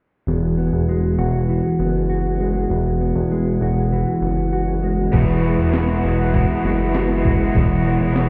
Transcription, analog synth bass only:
0.27 E1
0.73 E1
1.18 E1
1.79 F#1
2.70 E1
3.15 E1
3.61 E1
4.22 F#1
5.13 E1
5.58 E1
6.03 E1
6.64 F#1
7.55 E1
8.00 E1

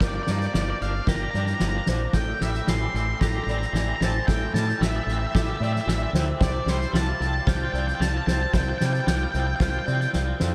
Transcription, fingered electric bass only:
0.00 G1
0.28 G2
0.54 G1
0.81 G1
1.07 G1
1.34 G2
1.61 G1
1.88 A#1
2.13 A1
2.41 A1
2.67 A1
2.94 A1
3.21 A1
3.46 A1
3.73 A1
4.00 A1
4.28 A1
4.53 A2
4.80 A1
5.06 A1
5.35 A1
5.60 A2
5.87 A1
6.13 D2
6.40 C2
6.66 C2
6.93 C2
7.20 C2
7.47 C2
7.73 C2
8.00 C2
8.27 C2
8.54 C2
8.81 C3
9.07 C2
9.34 C2
9.60 C2
9.87 C3
10.14 C2
10.41 F2

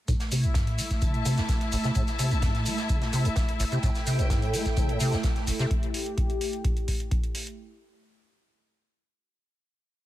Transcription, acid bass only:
0.08 A2
0.32 C3
0.44 A1
0.55 A2
0.79 A3
1.02 C3
1.14 A2
1.25 C3
1.38 A1
1.72 A1
1.84 C3
1.96 A2
2.19 C3
2.31 A1
2.43 A2
2.66 A3
2.90 C3
3.02 A2
3.13 C3
3.25 A1
3.60 A1
3.72 C3
3.83 A2
4.07 C3
4.19 A1
4.30 A2
4.54 A3
4.77 C3
4.89 A2
5.00 C3
5.13 A1
5.47 A1
5.59 C3

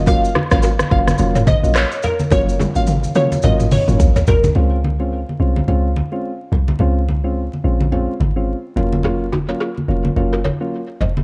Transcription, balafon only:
0.07 F#4 A#4
0.35 D#4 F#4
0.51 A#4 C#5
0.63 F#4 A#4
1.36 A#4 C#5
1.47 C5 D#5
2.04 C#5 F5
2.32 F#4 A#4
2.60 F4 G#4
3.16 F#4 A#4
3.44 A#4 C#5
4.16 A#4 C#5
4.28 F#4 A#4
9.04 F4 G#4
9.32 D#4 F#4
9.49 A#4 C#5
9.60 F4 G#4
10.33 F#4 A#4
10.45 A#4 C#5
11.01 C5 D#5

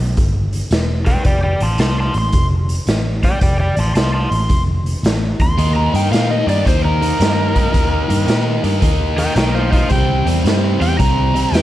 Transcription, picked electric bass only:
0.00 B1
0.17 G1
0.71 E1
1.25 F1
1.61 A1
1.79 C2
2.15 A1
2.33 F1
2.88 A1
3.42 F1
3.77 A1
3.96 C2
4.31 A1
4.50 F1
5.03 A1
5.40 D#2
5.58 D#2
5.94 G2
6.11 A#2
6.47 G2
6.66 D#2
7.20 G2
7.74 D#2
8.10 G2
8.28 A#2
8.64 G2
8.82 D#2
9.36 B1
9.90 C2
10.26 E2
10.44 G2
10.81 E2
10.99 C2
11.52 E2

